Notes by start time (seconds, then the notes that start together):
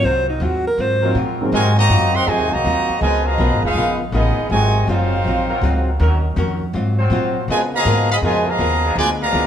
0.03 C2 G#2 F#3 C4 F4 A#4 C5
0.29 D#4
0.40 D#2 G#2 F#3 C4 F4 F#4
0.67 A#4
0.78 G#2 F#3 C4 F4 C5
1.02 F#3 A#3 C4 D#4 F4 A#4
1.15 G#2 A#2 F#3 C4 F4
1.41 G#2 F#3 A#3 C4 D#4 G#4
1.52 G#2 C3 D#3 F#3 G#3 C4 F4 F#4 A#4 C5 D#5 G#5
1.77 D#3 F#3 A#3 F#4 C5 D#5 A#5
1.89 F#2 G#2 F#3 C4 F4
2.14 D#3 F#3 C4 A#4 D#5 F#5 C6
2.26 F2 G#2 C3 D#3 F#3 G#3 C4 F4 F#4 C5 D#5 G#5
2.39 D#2
2.50 C2 D#3 F#3 A#3 F#4 C5 D#5 A#5
2.64 D#2 G#2 F#3 C4 F4
2.89 muted upright bass stroke
2.99 C#2 B2 C#3 F3 G#3 B3 D#4 F4 A#4 B4 G#5
3.03 A#4 D#5
3.24 B2 F3 A#3 G#4 D#5 F5 A#5
3.38 B1 C#3 F3 B3 D#4 F4 A#4 B4
3.51 G#1
3.61 F1 G#3 B3 D#4 F4 G#4 B4 F5
3.75 A#1 C#3 B3 F4
3.79 A#4
4.12 A1 C#3 G#3 B3 D#4 F4 G#4 A#4 D#5
4.37 muted upright bass stroke
4.50 G#1 G#2 C3 D#3 F#3 G#3 C4 F4 F#4 A#4 C5 D#5 G#5
4.87 F#1 G#2 F#3 C4 D#4 F4 A#4 C5 F5
5.24 A#1 G#2 F#3 C4 F4
5.49 F#3 C4 F4 A#4
5.62 C#2 G#2 F#3 C4 F4
6.00 D#2 D#3 F#3 C#4 D#4 F#4 A#4
6.36 F2 D#3 C#4 F#4 A#4
6.73 G#2 F#3 C4 F4
6.98 F#3 C4 F4 C5
7.10 G#2 A#2 F#3 C4 F4
7.48 B2 C#3 F3 G#3 B3 F4 A#4 B4 D#5 G#5
7.74 B2 F3 A#3 G#4 D#5 F5 A#5
7.85 G#2 C#3 B3 F4 A#4
8.12 F3 G#3 B3 G#4 D#5 F5 B5
8.22 F2 B2 C#3 F3 G#3 B3 F4 A#4 B4 D#5 G#5
8.48 B2 F3 A#3 G#4 D#5 F5 A#5
8.58 D#2 C#3 B3 F4 A#4
8.84 F3 B3 D4 G#4
8.96 D2 B2 D3 F3 G#3 B3 F4 B4 D5 G#5
9.22 B2 F3 A#3 G#4 D5 F5 A#5
9.33 C#2 D3 G#3 B3 F4